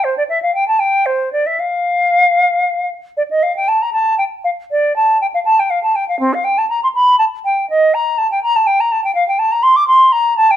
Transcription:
flute
0.04 C5
0.17 D5
0.29 E5
0.42 F5
0.55 G5
0.68 A5
0.79 G5
1.06 C5
1.32 D5
1.46 E5
1.59 F5
3.17 D5
3.30 D#5
3.43 F5
3.56 G5
3.68 A5
3.82 A#5
3.93 A5
4.18 G5
4.44 F5
4.71 D5
4.96 A5
5.21 G5
5.34 F5
5.45 A5
5.59 G5
5.70 F5
5.83 A5
5.95 G5
6.08 F5
6.20 C4
6.34 F5
6.44 G5
6.58 A5
6.69 A#5
6.83 C6
6.95 B5
7.19 A5
7.45 G5
7.70 D#5
7.94 A#5
8.18 A5
8.31 G5
8.43 A#5
8.56 A5
8.67 G5
8.80 A#5
8.92 A5
9.04 G5
9.15 F5
9.28 G5
9.39 A5
9.52 A#5
9.63 C6
9.76 D6
9.87 C6
10.12 A#5
10.37 A5
10.51 G5

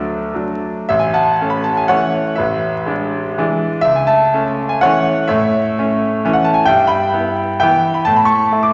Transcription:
grand piano
Already playing: D2 F#3 A3 D4 D5 D6
0.34 F#3 A3 D4
0.89 A1 E5
0.99 G#5
1.14 F#5 A5
1.41 A3 C#4
1.50 B5
1.64 A5
1.77 G#5
1.88 E3 A3 C#4 C#5 F#5
2.36 A1 B4 E5
2.86 G#3 D4
3.38 E3 G#3 D4
3.81 C#2 E5
3.96 G#5
4.07 E5 A5
4.34 A3 C#4
4.69 G#5
4.81 E3 A3 C#4 C#5 F#5
5.28 A2 C#5 E5
5.78 A3 C#4
6.25 E3 A3 C#4
6.33 F#5
6.44 A5
6.54 G#5
6.65 G2 E5 G5
6.87 G5 B5
7.14 B3 E4
7.60 E3 B3 E4 E5 G5
7.94 B5
8.05 A2 A5
8.16 B5
8.25 A5 C#6
8.51 A3 E4
8.63 D6

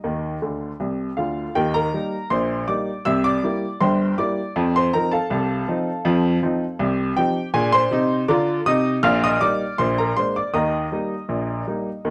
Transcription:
upright piano
Already playing: D#5 A#5 D#6
0.04 D#2 D#3
0.42 D2 D3
0.80 C2 C3
1.17 D2 D3 F4 F5
1.55 D#2 D#3 G4 G5
1.74 A#4 A#5
1.94 G3 A#3 D#4
2.30 A#1 A#2 C5 C6
2.68 G3 A#3 D#4 D5 D6
3.05 C2 C3 E5 E6
3.24 D5 D6
3.43 G3 A#3 E4
3.80 G1 G2 C5 G5 C6
4.18 G3 A#3 E4 D5 D6
4.56 F2 F3
4.76 C5 C6
4.93 F3 C4 D#4 A#4 A#5
5.11 A4 F5 A5
5.30 C2 C3
5.68 F3 C4 D#4
6.05 F2 F3
6.43 F3 C4 D#4
6.79 C2 C3
7.17 F3 C4 D#4 G4 G5
7.54 A#2 D4 G#4 G#5
7.72 C5 C6
7.91 C3 D#4
8.28 D3 F4 D5 A#5 D6
8.66 C3 D#4 D#5 D#6
9.03 A#1 A#2 F5 F6
9.24 D#5 D#6
9.41 G3 A#3 D#4 D5 D6
9.78 A#1 A#2 C5 C6
9.98 A#4 A#5
10.16 G#3 A#3 D4 C5 C6
10.36 D5 D6
10.54 D#2 D#3 D#5 A#5 D#6
10.92 G3 A#3 D#4
11.29 A#1 A#2
11.67 G3 A#3 D#4
12.05 D#2 D#3

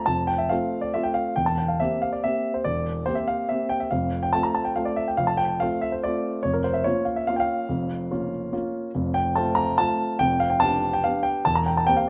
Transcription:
grand piano
0.06 F1 F2 A5
0.27 G5
0.38 E5
0.49 A3 C4 F4 F5
0.81 D5
0.94 A3 C4 F4 E5
1.03 G5
1.14 F5
1.36 E1 E2 G5
1.46 A5
1.58 G5
1.68 F5
1.80 A#3 C4 G4 E5
2.02 F5
2.13 D5
2.24 A#3 C4 G4 E5
2.54 C5
2.64 E1 E2 D5
3.06 A#3 C4 G4 C5
3.15 E5
3.28 F5
3.49 A#3 C4 G4 E5
3.69 G5
3.80 E5
3.91 F1 F2 F5
4.23 G5
4.33 A3 C4 F4 A5
4.43 A#5
4.55 A5
4.65 G5
4.76 A3 C4 F4 F5
4.85 D5
4.96 E5
5.08 G5
5.17 F1 F2 F5
5.27 A5
5.37 G5
5.60 A3 C4 F4 F5
5.81 E5
5.92 C5
6.03 A3 C4 F4 D5
6.43 F1 F2 C#5
6.53 A#4
6.64 C5
6.74 E5
6.84 A#3 C#4 F4 C#5
7.05 F5
7.16 E5
7.27 A#3 C#4 F4 F5
7.36 F5 G5
7.69 F1 F2
8.11 A#3 C#4 F4
8.52 A#3 C#4 F4
8.95 F1 F2
9.14 G5
9.36 A3 C4 F4 A5
9.55 A#5
9.78 A3 C4 F4 A5
10.19 F1 F2 G5
10.40 F5
10.50 G5
10.60 B3 D4 G4 A5
10.93 G5
11.04 B3 D4 G4 F5
11.23 G5
11.45 E1 E2 A5
11.55 A#5
11.66 G5
11.77 A5
11.87 A#3 C4 G4 G5
11.97 F5

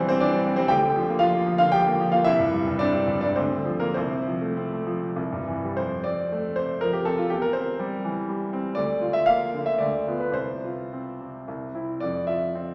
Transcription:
grand piano
Already playing: E1 E2 G3 C4 D4 C5 D5
0.00 E3
0.09 G3 C4 C5
0.20 E3 D4 D5
0.34 G3
0.46 C4
0.56 G3 C4 C5
0.68 D2 G4 G5
0.83 D3
0.96 F3
1.09 A#3
1.19 F3 F4 F5
1.34 A#3
1.46 F3
1.58 D3 F4 F5
1.72 F3 G4 G5
1.87 A#3
2.00 F3
2.12 A#3 F4 F5
2.24 C2 E4 E5
2.39 G2
2.53 G3
2.67 G2
2.79 C4 D4 D5
2.94 G3
3.07 G2
3.21 G3 D4 D5
3.36 D2 C4 C5
3.51 D3
3.65 F3
3.80 A#3 A#4
3.94 C2 C4 C5
4.11 C3
4.27 F3
4.41 A3
4.57 C4
4.72 A3
4.87 F3
5.02 C3
5.16 C2
5.32 G2
5.48 E3
5.64 G3
5.77 F2 C5
6.04 C4 D5
6.32 A3
6.56 C3 C5
6.81 F3 A#4
6.93 G4
7.05 C4 A4
7.18 F4
7.30 E2 G4
7.42 A#4
7.53 C4 C5
7.79 G3
8.04 E3
8.29 G3
8.53 C4
8.75 D2 D5
9.01 F4
9.13 E5
9.26 A#3 F5
9.54 D3
9.66 E5
9.78 D2 D5
10.08 B3 F4
10.20 B4
10.32 C2 C5
10.64 F4
10.93 C4
11.21 C3
11.48 C2
11.75 C4 E4
12.00 F2 D5
12.27 F4 E5
12.55 C4

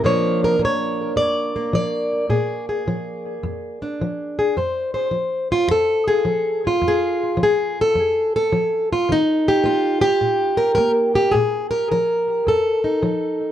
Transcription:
steel-string acoustic guitar
0.04 A#2 F3 A#3 D4 C#5
0.44 A#4
0.59 F3
0.65 C#5
1.16 F2 D5
1.56 A#3
1.73 F3 D5
2.30 A#2 G#4
2.69 G#4
2.88 F3
3.43 F2
3.82 D4
4.01 F3
4.39 G#4
4.57 F2 C5
4.94 C5
5.11 F3
5.52 F4
5.68 F2 A4
6.08 G#4
6.25 F3
6.67 F4
6.82 F2
6.88 G#4
7.37 F3
7.43 G#4
7.81 A4
7.95 F2
8.36 A4
8.53 F3
8.93 F4
9.09 D#3 D#4
9.48 G4
9.64 A#3 F4
10.01 G4
10.21 A#2
10.57 A#4
10.75 A#3 A#4
11.15 G4
11.31 A#2 G#4
11.71 A#4
11.92 F3 A#4
12.47 F2 A4
12.84 D#4
13.03 F3

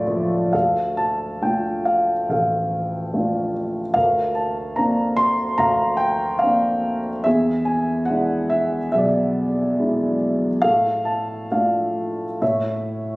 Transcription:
grand piano
Already playing: D1 D2 D3 F3 A3 F4 D5 E5
0.07 F3
0.53 D2 A4 F5
0.97 A5
1.42 A3 D4 F4 G5
1.85 F5
2.29 A1 A4 F5
3.14 A3 D4 F4
3.94 D2 A#4 F5
4.35 A5
4.76 A#3 C4 D4 A#5
5.17 C6
5.58 D2 F5 A#5
5.97 G5
6.39 A#3 F5
6.43 C4 D4
7.24 E2 G#4 E5
7.65 G#5
8.05 G#3 D4 F#5
8.10 E4
8.50 E5
8.92 B1 G#4 E5
8.98 D5
9.05 E5
9.79 G#3 D4 E4
10.62 A2 A4 F5
11.05 A5
11.51 A3 D4 F4 F5
12.42 A2 C#5 E5

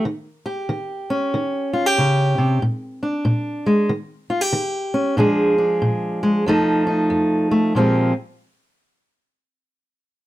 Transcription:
steel-string acoustic guitar
0.05 D#3
0.46 G4
0.69 D#3
1.10 C#4
1.34 D#3
1.73 F4
1.86 G4
1.98 C#3
2.38 C3
2.62 A#2
3.03 D4
3.25 A#2
3.66 G#3
3.89 D#3
4.30 F4
4.41 G4
4.53 D#3
4.94 C#4
5.17 A#2 F3 G#3 D4 G#4
5.58 D4
5.82 A#2
6.23 G#3
6.46 F2 F3 A3 D#4 A4
6.87 D#4
7.10 F2
7.51 A3
7.75 A#2 F3 G#3 C4 G4

